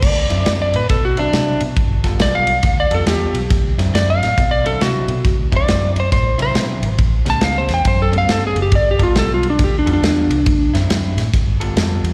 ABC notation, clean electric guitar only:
X:1
M:4/4
L:1/8
Q:"Swing" 1/4=138
K:Dmix
V:1 name="Clean electric guitar"
z [D,F,CE] [D,F,CE] z2 [D,F,CE] [D,F,CE] z | z [G,B,=FA] [G,B,FA] z2 [G,B,FA] [G,B,FA] z | z [D,F,CE] [D,F,CE] z2 [D,F,CE] [D,F,CE] z | z [D,F,CE] [D,F,CE] z2 [D,F,CE] [D,F,CE] z |
z [A,,G,B,^C] [A,,G,B,C] z2 [A,,G,B,C] [A,,G,B,C] z | z [G,B,=FA] [G,B,FA] z2 [G,B,FA] [G,B,FA] z | z [D,F,CE] [D,F,CE] z2 [G,B,=FA] [G,B,FA] z |]